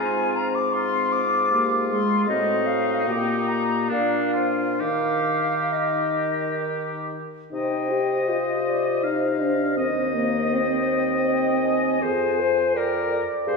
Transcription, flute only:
0, 0, Header, 1, 2, 480
1, 0, Start_track
1, 0, Key_signature, -3, "major"
1, 0, Tempo, 748130
1, 468, Tempo, 783290
1, 1429, Time_signature, 3, 2, 24, 8
1, 1908, Tempo, 832178
1, 2388, Tempo, 903614
1, 4308, Tempo, 752823
1, 4310, Key_signature, -3, "minor"
1, 6228, Tempo, 730816
1, 8219, End_track
2, 0, Start_track
2, 0, Title_t, "Flute"
2, 0, Program_c, 0, 73
2, 0, Note_on_c, 0, 80, 67
2, 229, Note_on_c, 0, 82, 59
2, 239, Note_off_c, 0, 80, 0
2, 352, Note_on_c, 0, 86, 60
2, 362, Note_off_c, 0, 82, 0
2, 469, Note_on_c, 0, 84, 66
2, 478, Note_off_c, 0, 86, 0
2, 708, Note_on_c, 0, 86, 65
2, 718, Note_off_c, 0, 84, 0
2, 1048, Note_off_c, 0, 86, 0
2, 1191, Note_on_c, 0, 84, 58
2, 1407, Note_off_c, 0, 84, 0
2, 1410, Note_on_c, 0, 75, 61
2, 1652, Note_on_c, 0, 77, 58
2, 1661, Note_off_c, 0, 75, 0
2, 1909, Note_on_c, 0, 79, 55
2, 1918, Note_off_c, 0, 77, 0
2, 2140, Note_on_c, 0, 82, 56
2, 2149, Note_off_c, 0, 79, 0
2, 2380, Note_off_c, 0, 82, 0
2, 2383, Note_on_c, 0, 77, 52
2, 2693, Note_off_c, 0, 77, 0
2, 2862, Note_on_c, 0, 77, 54
2, 3351, Note_on_c, 0, 75, 41
2, 3359, Note_off_c, 0, 77, 0
2, 3830, Note_off_c, 0, 75, 0
2, 4316, Note_on_c, 0, 79, 39
2, 4793, Note_on_c, 0, 72, 38
2, 4802, Note_off_c, 0, 79, 0
2, 5273, Note_on_c, 0, 75, 39
2, 5282, Note_off_c, 0, 72, 0
2, 6227, Note_on_c, 0, 79, 42
2, 6237, Note_off_c, 0, 75, 0
2, 6704, Note_off_c, 0, 79, 0
2, 6708, Note_on_c, 0, 79, 44
2, 6952, Note_on_c, 0, 80, 45
2, 6962, Note_off_c, 0, 79, 0
2, 7683, Note_on_c, 0, 79, 45
2, 7693, Note_off_c, 0, 80, 0
2, 7995, Note_off_c, 0, 79, 0
2, 8153, Note_on_c, 0, 77, 46
2, 8219, Note_off_c, 0, 77, 0
2, 8219, End_track
0, 0, End_of_file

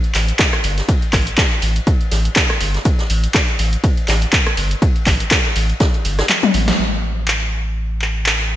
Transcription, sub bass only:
0, 0, Header, 1, 2, 480
1, 0, Start_track
1, 0, Tempo, 491803
1, 864, Time_signature, 4, 2, 24, 8
1, 8357, End_track
2, 0, Start_track
2, 0, Title_t, "Sub bass"
2, 0, Program_c, 0, 38
2, 145, Note_on_c, 0, 33, 91
2, 313, Note_off_c, 0, 33, 0
2, 624, Note_on_c, 0, 31, 90
2, 793, Note_off_c, 0, 31, 0
2, 1104, Note_on_c, 0, 33, 99
2, 1273, Note_off_c, 0, 33, 0
2, 1584, Note_on_c, 0, 33, 96
2, 1753, Note_off_c, 0, 33, 0
2, 2065, Note_on_c, 0, 33, 92
2, 2233, Note_off_c, 0, 33, 0
2, 2545, Note_on_c, 0, 31, 89
2, 2713, Note_off_c, 0, 31, 0
2, 3025, Note_on_c, 0, 33, 100
2, 3193, Note_off_c, 0, 33, 0
2, 3504, Note_on_c, 0, 33, 95
2, 3673, Note_off_c, 0, 33, 0
2, 3985, Note_on_c, 0, 33, 98
2, 4153, Note_off_c, 0, 33, 0
2, 4464, Note_on_c, 0, 31, 94
2, 4633, Note_off_c, 0, 31, 0
2, 4944, Note_on_c, 0, 33, 99
2, 5113, Note_off_c, 0, 33, 0
2, 5424, Note_on_c, 0, 33, 94
2, 5593, Note_off_c, 0, 33, 0
2, 5904, Note_on_c, 0, 31, 89
2, 6073, Note_off_c, 0, 31, 0
2, 6384, Note_on_c, 0, 33, 94
2, 6553, Note_off_c, 0, 33, 0
2, 6624, Note_on_c, 0, 33, 90
2, 8357, Note_off_c, 0, 33, 0
2, 8357, End_track
0, 0, End_of_file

